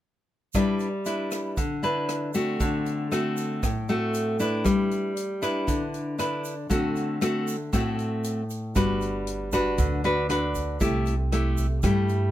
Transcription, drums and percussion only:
0.54 kick medium
0.54 cross-stick medium
0.54 closed hi-hat soft
0.54 shaker medium
0.79 closed hi-hat soft
0.79 shaker soft
1.05 closed hi-hat soft
1.05 shaker soft
1.32 cross-stick medium
1.32 closed hi-hat soft
1.32 shaker medium
1.57 kick medium
1.57 closed hi-hat soft
1.57 shaker soft
1.83 closed hi-hat soft
1.83 shaker soft
2.09 cross-stick medium
2.09 closed hi-hat soft
2.34 closed hi-hat soft
2.34 shaker medium
2.60 kick medium
2.60 closed hi-hat soft
2.60 shaker medium
2.86 closed hi-hat soft
2.86 shaker soft
3.12 cross-stick medium
3.12 closed hi-hat soft
3.12 shaker soft
3.37 closed hi-hat soft
3.37 shaker medium
3.63 kick medium
3.63 cross-stick medium
3.63 closed hi-hat soft
3.63 shaker medium
3.89 closed hi-hat soft
3.89 shaker soft
4.14 closed hi-hat soft
4.14 shaker soft
4.40 closed hi-hat soft
4.40 shaker medium
4.65 kick medium
4.65 cross-stick medium
4.65 closed hi-hat soft
4.65 shaker medium
4.91 closed hi-hat soft
4.91 shaker soft
5.17 closed hi-hat soft
5.17 shaker soft
5.42 cross-stick soft
5.42 closed hi-hat soft
5.42 shaker medium
5.68 kick medium
5.68 closed hi-hat soft
5.68 shaker medium
5.94 closed hi-hat soft
5.94 shaker soft
6.19 cross-stick medium
6.19 closed hi-hat soft
6.19 shaker soft
6.45 closed hi-hat soft
6.45 shaker medium
6.70 kick soft
6.70 closed hi-hat soft
6.70 shaker medium
6.96 closed hi-hat soft
6.96 shaker soft
7.22 cross-stick medium
7.22 closed hi-hat soft
7.22 shaker soft
7.48 closed hi-hat soft
7.48 shaker medium
7.73 kick medium
7.73 cross-stick soft
7.73 closed hi-hat soft
7.73 shaker medium
7.99 closed hi-hat soft
7.99 shaker soft
8.24 closed hi-hat soft
8.24 shaker medium
8.50 closed hi-hat soft
8.50 shaker medium
8.76 kick medium
8.76 cross-stick soft
8.76 closed hi-hat soft
8.76 shaker medium
9.01 closed hi-hat soft
9.01 shaker soft
9.27 closed hi-hat soft
9.52 kick soft
9.52 cross-stick soft
9.52 closed hi-hat soft
9.52 shaker medium
9.78 kick medium
9.78 closed hi-hat soft
9.78 shaker soft
10.04 closed hi-hat soft
10.04 shaker soft
10.30 cross-stick medium
10.30 closed hi-hat soft
10.55 kick soft
10.55 closed hi-hat soft
10.55 shaker medium
10.80 kick medium
10.80 closed hi-hat soft
10.80 shaker medium
11.06 closed hi-hat soft
11.06 shaker soft
11.32 cross-stick medium
11.32 closed hi-hat soft
11.57 kick soft
11.57 closed hi-hat soft
11.57 shaker medium
11.83 kick medium
11.83 cross-stick medium
11.83 closed hi-hat soft
11.83 shaker medium
12.09 closed hi-hat soft
12.09 shaker soft

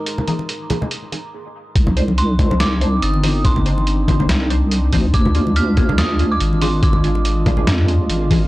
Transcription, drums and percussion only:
0.06 closed hi-hat medium
0.18 low conga medium
0.28 closed hi-hat soft
0.28 high conga medium
0.39 muted conga soft
0.49 closed hi-hat medium
0.70 closed hi-hat soft
0.70 high conga medium
0.70 low conga medium
0.82 low conga medium
0.91 closed hi-hat medium
1.12 closed hi-hat medium
1.12 muted conga soft
1.75 kick loud
1.75 closed hi-hat medium
1.87 low conga medium
1.97 closed hi-hat medium
2.08 muted conga medium
2.18 closed hi-hat medium
2.39 kick medium
2.39 closed hi-hat medium
2.39 low conga medium
2.51 low conga medium
2.60 snare loud
2.60 closed hi-hat medium
2.81 closed hi-hat medium
3.02 closed hi-hat medium
3.14 muted conga soft
3.24 open hi-hat loud
3.24 muted conga medium
3.45 kick loud
3.45 closed hi-hat medium
3.56 low conga medium
3.66 closed hi-hat medium
3.78 muted conga medium
3.87 closed hi-hat medium
4.08 kick medium
4.08 closed hi-hat medium
4.08 high conga medium
4.08 low conga loud
4.20 low conga medium
4.29 snare loud
4.29 closed hi-hat medium
4.50 closed hi-hat medium
4.71 closed hi-hat medium
4.92 kick medium
4.92 open hi-hat medium
4.92 high conga medium
5.14 kick loud
5.14 closed hi-hat medium
5.26 low conga medium
5.35 closed hi-hat medium
5.47 muted conga medium
5.56 closed hi-hat medium
5.77 kick medium
5.77 closed hi-hat medium
5.77 low conga medium
5.89 low conga medium
5.98 snare loud
5.98 closed hi-hat medium
6.19 closed hi-hat medium
6.41 closed hi-hat medium
6.53 muted conga soft
6.62 open hi-hat medium
6.62 muted conga medium
6.83 kick loud
6.83 closed hi-hat medium
6.93 low conga medium
7.04 closed hi-hat soft
7.15 muted conga medium
7.25 closed hi-hat medium
7.46 kick medium
7.46 closed hi-hat medium
7.46 high conga medium
7.46 low conga medium
7.57 low conga medium
7.67 snare loud
7.67 closed hi-hat medium
7.88 closed hi-hat medium
8.10 closed hi-hat medium
8.31 kick medium
8.31 open hi-hat medium
8.31 high conga medium

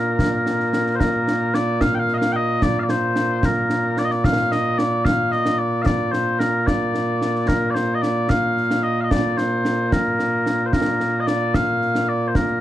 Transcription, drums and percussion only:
0.19 concert bass drum medium
0.19 snare medium
0.46 snare medium
0.60 snare soft
0.73 snare medium
0.87 snare soft
1.00 concert bass drum medium
1.00 snare medium
1.28 snare medium
1.54 snare medium
1.81 concert bass drum soft
1.81 snare medium
2.08 snare soft
2.22 snare medium
2.62 concert bass drum medium
2.62 snare medium
2.89 snare medium
3.16 snare medium
3.43 concert bass drum medium
3.43 snare medium
3.70 snare medium
3.97 snare medium
4.11 snare soft
4.24 concert bass drum medium
4.24 snare medium
4.52 snare medium
4.79 snare medium
5.05 concert bass drum medium
5.05 snare medium
5.32 snare soft
5.46 snare medium
5.86 concert bass drum medium
5.86 snare medium
6.14 snare medium
6.40 snare medium
6.68 concert bass drum medium
6.68 snare medium
6.95 snare medium
7.22 snare medium
7.35 snare soft
7.49 concert bass drum medium
7.49 snare medium
7.76 snare medium
8.03 snare medium
8.30 concert bass drum soft
8.30 snare medium
8.57 snare soft
8.71 snare medium
9.11 concert bass drum medium
9.11 snare medium
9.38 snare medium
9.65 snare medium
9.92 concert bass drum medium
9.92 snare medium
10.19 snare medium
10.46 snare medium
10.73 concert bass drum medium
10.73 snare medium
11.00 snare medium
11.27 snare medium
11.54 concert bass drum soft
11.54 snare medium
11.82 snare soft
11.95 snare medium
12.35 concert bass drum medium
12.35 snare medium

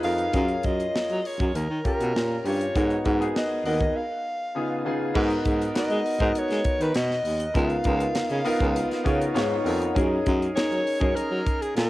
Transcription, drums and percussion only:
0.03 open hi-hat medium
0.18 closed hi-hat soft
0.33 kick loud
0.33 closed hi-hat loud
0.48 closed hi-hat soft
0.63 kick medium
0.63 closed hi-hat medium
0.80 closed hi-hat soft
0.96 snare loud
1.09 closed hi-hat soft
1.25 open hi-hat medium
1.40 kick medium
1.40 closed hi-hat soft
1.55 closed hi-hat medium
1.85 kick medium
1.85 closed hi-hat medium
2.00 closed hi-hat medium
2.16 snare medium
2.45 open hi-hat medium
2.61 closed hi-hat soft
2.76 kick loud
2.76 closed hi-hat loud
2.90 closed hi-hat soft
3.05 kick medium
3.05 closed hi-hat medium
3.22 closed hi-hat soft
3.36 snare loud
3.66 open hi-hat medium
3.81 kick medium
3.81 closed hi-hat soft
5.15 kick loud
5.15 crash loud
5.30 closed hi-hat soft
5.45 kick medium
5.45 closed hi-hat medium
5.61 closed hi-hat soft
5.75 snare loud
5.75 closed hi-hat medium
5.90 closed hi-hat soft
6.06 open hi-hat medium
6.20 kick medium
6.35 closed hi-hat medium
6.50 snare soft
6.50 closed hi-hat soft
6.64 kick medium
6.64 closed hi-hat medium
6.81 closed hi-hat medium
6.95 snare loud
6.95 closed hi-hat medium
7.11 snare soft
7.25 open hi-hat medium
7.40 closed hi-hat medium
7.55 kick loud
7.55 closed hi-hat loud
7.70 closed hi-hat soft
7.84 kick medium
7.84 closed hi-hat medium
8.01 closed hi-hat medium
8.15 snare loud
8.15 closed hi-hat medium
8.30 closed hi-hat soft
8.45 open hi-hat medium
8.61 kick medium
8.76 closed hi-hat medium
8.91 snare soft
8.91 closed hi-hat soft
9.06 kick medium
9.06 closed hi-hat medium
9.21 closed hi-hat medium
9.36 snare loud
9.36 closed hi-hat medium
9.66 open hi-hat medium
9.82 closed hi-hat soft
9.96 kick loud
9.96 closed hi-hat loud
10.26 kick medium
10.26 closed hi-hat medium
10.42 closed hi-hat soft
10.57 snare loud
10.57 closed hi-hat loud
10.72 closed hi-hat soft
10.87 open hi-hat medium
11.01 kick medium
11.17 closed hi-hat medium
11.46 kick medium
11.46 closed hi-hat medium
11.62 closed hi-hat medium
11.77 snare loud
11.77 closed hi-hat medium

